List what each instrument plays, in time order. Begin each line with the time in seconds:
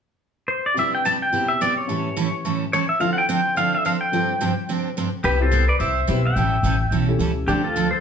0.48 pedal steel guitar C5
0.66 pedal steel guitar D5
0.74 upright piano C3 G3 D4 E4, steel-string acoustic guitar C3 G3 B3 E4 G4
0.79 upright piano B4, pedal steel guitar E5
0.95 pedal steel guitar G5
1.05 steel-string acoustic guitar C3 G3 B3 E4 G4, pedal steel guitar A5
1.22 pedal steel guitar G5
1.31 upright piano B2 E4 G4 C5, steel-string acoustic guitar C3 G3 B3 E4 G4
1.48 pedal steel guitar E5
1.61 steel-string acoustic guitar C3 G3 B3 E4 G4, pedal steel guitar D5
1.77 pedal steel guitar C#5
1.88 upright piano A2 E3 C#4 G4 B4, steel-string acoustic guitar A2 E3 G3 C#4 E4 A4
2.17 steel-string acoustic guitar A2 E3 G3 C#4 E4 A4
2.45 steel-string acoustic guitar A2 E3 G3 C#4 E4 A4
2.73 steel-string acoustic guitar A2 E3 G3 C#4 E4 A4, pedal steel guitar C#5
2.89 pedal steel guitar E5
3.00 upright piano D2 D3 E4 F4 C5, steel-string acoustic guitar D3 F3 C4 D4 A4, pedal steel guitar F5
3.13 pedal steel guitar F#5
3.18 pedal steel guitar G5
3.29 steel-string acoustic guitar D3 F3 C4 D4 A4, pedal steel guitar G5
3.55 upright piano D3 D4 E4 A4, steel-string acoustic guitar D3 F3 C4 D4 A4, pedal steel guitar F5
3.75 pedal steel guitar E5
3.85 steel-string acoustic guitar D3 F3 C4 D4 A4, pedal steel guitar F5
4.01 pedal steel guitar G5
4.12 upright piano G2 D3 F4 A4 C5, steel-string acoustic guitar G2 C3 F3 C4 D4 G4
4.41 steel-string acoustic guitar G2 C3 F3 C4 D4 G4
4.69 steel-string acoustic guitar G2 C3 F3 C4 D4 G4
4.97 steel-string acoustic guitar G2 C3 F3 C4 D4 G4
5.24 upright bass C2, steel-string acoustic guitar C3 G3 B3 E4 G4, pedal steel guitar G4 B4
5.40 upright piano C4 E4 G4 B4, pedal steel guitar A4 C5
5.51 steel-string acoustic guitar C3 G3 B3 E4 G4
5.68 pedal steel guitar B4 D5
5.79 upright bass C2, steel-string acoustic guitar C3 G3 B3 E4 G4, pedal steel guitar C5 E5
6.07 upright bass B1, steel-string acoustic guitar C3 G3 B3 E4 G4, upright piano C4 E4 G4 B4
6.25 pedal steel guitar E5 G5
6.36 upright bass A1, steel-string acoustic guitar E3 G3 C#4 E4 A4
6.63 upright bass A1, steel-string acoustic guitar E3 G3 C#4 E4 A4
6.91 upright bass B1, steel-string acoustic guitar E3 G3 C#4 E4 A4
7.07 upright piano C#4 E4 G4 A4
7.19 upright bass C#2, steel-string acoustic guitar E3 G3 C#4 E4 A4
7.47 upright bass D2, steel-string acoustic guitar D3 F3 C4 D4 A4, pedal steel guitar D4 G4
7.64 pedal steel guitar F4 A4
7.76 steel-string acoustic guitar D3 F3 C4 D4 A4
7.91 pedal steel guitar A4 C5